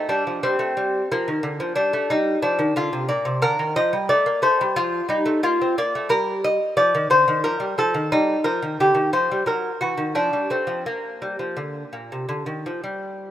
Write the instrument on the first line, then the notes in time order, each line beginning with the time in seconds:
lute
0.09 G3 D4
0.27 F3
0.43 G3 C4
0.59 A3
0.77 G3
1.12 F3 A#3
1.28 D#3
1.43 D3
1.60 F3
1.76 G3 D4
1.93 A3
2.10 G3 D#4
2.42 F3 D4
2.59 D#3
2.76 D3 F4
2.93 C3
3.09 A#2 D5
3.25 C3
3.42 D3 A#4
3.59 D#3
3.76 F3 D#5
3.93 G3
4.09 A3 D5
4.26 A#3
4.42 A3 C5
4.61 G3
4.76 F3 F4
5.09 G3 D#4
5.26 A3
5.43 A#3 F4
5.61 C4
5.78 A#3 D5
5.95 A3
6.09 G3 A#4
6.44 D#5
6.77 F3 D5
6.95 D#3
7.10 D3 C5
7.28 D#3
7.44 F3 A#4
7.60 G3
7.78 F3 A4
7.94 D#3
8.12 G3 D#4
8.44 F3 A#4
8.62 D#3
8.80 D3 G4
8.95 D#3
9.13 F3 C5
9.31 G3
9.46 F#3 A#4
9.81 E3 F#4
9.98 D#3
10.15 F3 D4
10.33 G3
10.50 A3 C4
10.67 F3
10.86 A#3
11.22 G3
11.39 F3
11.57 D3
11.93 A#2
12.12 C3
12.29 D3
12.46 D#3
12.66 F3
12.84 G3